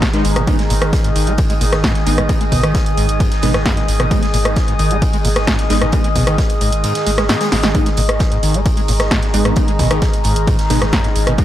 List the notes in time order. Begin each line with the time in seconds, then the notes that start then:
Already playing: G#2 D#3 G#4 D#5 A#5
0.02 B2, kick, snare, closed hi-hat
0.13 G#3 B3 D#4, snare, closed hi-hat
0.25 G#1, snare, closed hi-hat, open hi-hat
0.36 G#1 G#2, cross-stick, closed hi-hat
0.47 G#2 G#3 B3 D#4, kick, closed hi-hat
0.56 G#3 D#6, snare, closed hi-hat
0.70 G#1 A#2, closed hi-hat, open hi-hat
0.82 G#1, cross-stick, closed hi-hat
0.93 kick, snare, closed hi-hat
1.04 G#2, closed hi-hat
1.16 G#1 D#3, closed hi-hat, open hi-hat
1.27 G#1 G#3, closed hi-hat
1.38 kick, closed hi-hat
1.50 G#3, closed hi-hat
1.61 G#1 A#2, closed hi-hat, open hi-hat
1.72 G#1, cross-stick, snare, closed hi-hat
1.84 G#2, kick, snare, closed hi-hat
1.95 snare, closed hi-hat
2.06 G#1 G#3 B3 D#4, closed hi-hat, open hi-hat
2.18 G#1 G#2, cross-stick, closed hi-hat
2.29 G#3 B3 D#4, kick, closed hi-hat
2.41 G#3, closed hi-hat
2.52 G#1 B2, kick, closed hi-hat, open hi-hat
2.63 G#1 D#3, cross-stick, closed hi-hat
2.75 kick, snare, closed hi-hat
2.86 closed hi-hat
2.97 G#1 G#2, closed hi-hat, open hi-hat
3.09 G#1, closed hi-hat
3.20 G#2, kick, closed hi-hat
3.32 snare, closed hi-hat
3.42 G#1 B2 G#3 B3 D#4, closed hi-hat, open hi-hat
3.54 G#1 G#2, cross-stick, snare, closed hi-hat
3.66 F#2, kick, snare, closed hi-hat
3.77 B2, snare, closed hi-hat
3.88 G#1, snare, closed hi-hat, open hi-hat
4.00 G#1 B2, cross-stick, closed hi-hat
4.11 G#2 G#3 B3 D#4, kick, closed hi-hat
4.22 G#3, snare, closed hi-hat
4.34 G#1 A#2, closed hi-hat, open hi-hat
4.45 G#1, cross-stick, closed hi-hat
4.56 kick, snare, closed hi-hat
4.68 G#2, closed hi-hat
4.79 G#1 D#3, closed hi-hat, open hi-hat
4.91 G#1 G#3, closed hi-hat
5.02 kick, closed hi-hat
5.13 G#3, closed hi-hat
5.25 G#1 A#2, closed hi-hat, open hi-hat
5.36 G#1, cross-stick, snare, closed hi-hat
5.47 G#2, kick, snare, closed hi-hat
5.59 snare, closed hi-hat
5.70 G#1 G#3 B3 D#4, snare, closed hi-hat, open hi-hat
5.82 G#1 G#2, cross-stick, closed hi-hat
5.92 G#3 B3 D#4, kick, closed hi-hat
6.04 G#3, closed hi-hat
6.15 G#1 B2, kick, closed hi-hat, open hi-hat
6.27 G#1 D#3, cross-stick, closed hi-hat
6.38 kick, snare, closed hi-hat
6.50 closed hi-hat
6.61 G#1 G#2, closed hi-hat, open hi-hat
6.72 G#1, closed hi-hat
6.84 G#2, closed hi-hat
6.95 snare, closed hi-hat
7.06 G#1 G#3, closed hi-hat, open hi-hat
7.17 G#1 G#3, cross-stick, snare, closed hi-hat
7.29 G#2, snare, closed hi-hat
7.41 G#3, snare, closed hi-hat
7.52 G#1 G#2, snare, closed hi-hat, open hi-hat
7.63 G#1 G#3, snare, closed hi-hat
7.75 G#2 D#3 G#3 B3 D#4, kick, closed hi-hat
7.84 G#3 A#5, snare, closed hi-hat
7.97 G#1 A#2, closed hi-hat, open hi-hat
8.09 G#1, cross-stick, closed hi-hat
8.19 kick, snare, closed hi-hat
8.32 G#2, closed hi-hat
8.43 G#1 D#3, closed hi-hat, open hi-hat
8.54 G#1 G#3, closed hi-hat
8.66 kick, closed hi-hat
8.77 G#3, closed hi-hat
8.88 G#1 A#2, closed hi-hat, open hi-hat
9.00 G#1, cross-stick, snare, closed hi-hat
9.11 G#2, kick, snare, closed hi-hat
9.22 snare, closed hi-hat
9.34 G#1 G#3 B3 D#4, closed hi-hat, open hi-hat
9.45 G#1 G#2, cross-stick, closed hi-hat
9.56 G#3 B3 D#4, kick, closed hi-hat
9.68 G#3, closed hi-hat
9.79 G#1 B2, kick, closed hi-hat, open hi-hat
9.91 G#1 D#3, cross-stick, closed hi-hat
10.02 kick, snare, closed hi-hat
10.13 closed hi-hat
10.24 G#1 G#2, closed hi-hat, open hi-hat
10.36 G#1, closed hi-hat
10.47 G#2, kick, closed hi-hat
10.59 snare, closed hi-hat
10.70 G#1 B2 G#3 B3 D#4, closed hi-hat, open hi-hat
10.82 G#1 G#2, cross-stick, snare, closed hi-hat
10.93 F#2, kick, snare, closed hi-hat
11.04 B2, snare, closed hi-hat
11.16 G#1, snare, closed hi-hat, open hi-hat
11.27 G#1 B2, cross-stick, closed hi-hat
11.38 G#2 G#3 B3 D#4, kick, closed hi-hat